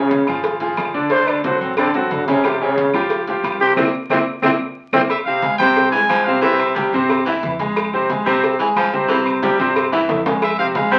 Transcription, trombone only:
0.00 0.27 C#3 loud
1.12 1.31 C5 loud
1.29 1.44 D4 loud
1.45 1.61 C5 loud
1.62 1.77 C4 medium
1.78 1.94 C4 loud
1.94 2.13 C4 loud
2.11 2.29 D3 loud
2.27 2.43 C3 loud
2.44 2.60 C3 medium
2.60 2.93 C#3 loud
3.61 3.76 G4 loud
3.76 3.85 C4 medium
4.11 4.18 C4 loud
4.42 4.51 C4 loud
4.93 5.01 C4 loud

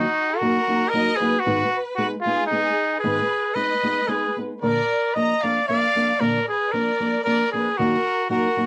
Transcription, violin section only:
0.00 0.39 F#4 medium
0.38 0.91 A#4 medium
0.90 1.19 D#5 loud
1.17 1.42 B4 medium
1.43 1.96 B4 medium
1.97 2.10 B4 medium
2.24 2.48 G#4 medium
2.49 2.98 G#4 medium
2.99 3.50 B4 medium
3.54 4.08 D#5 medium
4.08 4.37 B4 medium
4.64 5.13 D5 medium
5.17 5.44 A#5 medium
5.42 5.66 F5 medium
5.68 6.17 F5 loud
6.20 6.48 D5 medium
6.49 6.72 B4 medium
6.74 7.24 D5 medium
7.25 7.51 D5 medium
7.54 7.77 B4 medium
7.77 8.29 A#4 medium
8.30 8.66 A#4 medium

